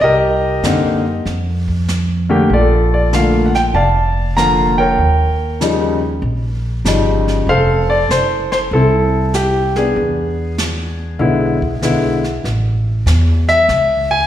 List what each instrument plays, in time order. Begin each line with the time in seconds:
0.01 upright bass C2, grand piano G4 A#4 D#5, brush sweep
0.63 upright bass F#2, grand piano D3 A#3 C4 D#4, snare, hi-hat pedal
1.26 upright bass F2, brush sweep, snare
1.68 kick
1.88 snare, hi-hat pedal
2.29 grand piano D3 A3 A#3 G4
2.50 upright bass A#1, grand piano F4 A4 D5, brush sweep
2.94 grand piano D5
3.13 grand piano D3 A3 A#3 F4 F5, snare, hi-hat pedal
3.46 grand piano F#5
3.55 grand piano G5, snare
3.74 upright bass F1, grand piano D5 F5 A5, brush sweep
4.37 grand piano D3 F3 A#3 F4 A#5, snare, hi-hat pedal
4.78 grand piano A#4 C#5 G5
4.98 upright bass D#2, brush sweep
5.61 grand piano C#3 F3 G3 D#4, snare, hi-hat pedal
6.22 upright bass A#1, brush sweep
6.85 upright bass G1, grand piano C#3 F3 G3 D#4, snare, hi-hat pedal
7.28 snare
7.47 upright bass F1, grand piano A4 C5 F5, brush sweep
7.90 grand piano D5
8.09 upright bass F#1, grand piano C5, snare, hi-hat pedal
8.52 grand piano C5, snare
8.71 upright bass C2, grand piano C4 E4 A4, brush sweep
9.34 grand piano G4, snare, hi-hat pedal
9.76 grand piano B3 D4 G#4, snare
9.96 upright bass E2, brush sweep
10.58 snare, hi-hat pedal
11.19 upright bass B1, grand piano D3 G#3 B3 E4, brush sweep
11.62 kick
11.82 upright bass B1, grand piano D3 G#3 B3 E4, snare, hi-hat pedal
12.24 snare
12.44 upright bass A1, brush sweep, snare
13.06 upright bass E2, snare, hi-hat pedal
13.48 grand piano E5, snare
13.69 upright bass C#2, brush sweep, snare
14.11 grand piano G#5